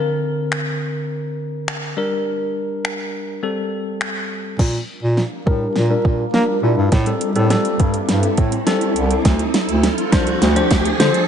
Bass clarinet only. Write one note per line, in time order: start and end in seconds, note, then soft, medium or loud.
4.59 4.79 A#2 loud
5.03 5.23 A#2 loud
5.47 5.67 A2 medium
5.76 5.96 A#2 medium
6.05 6.25 A#2 medium
6.34 6.44 A#3 loud
6.63 6.73 A#2 medium
6.78 6.88 G2 medium
6.92 7.12 A2 loud
7.36 7.56 A2 loud
7.80 8.00 G2 medium
8.09 8.29 G2 medium
8.38 8.58 A2 medium
8.96 9.16 C2 medium
9.25 9.45 D2 loud
9.69 9.89 D2 loud
10.13 10.33 C2 medium
10.42 10.62 D2 loud
10.71 10.91 D2 loud
11.00 11.10 D3 medium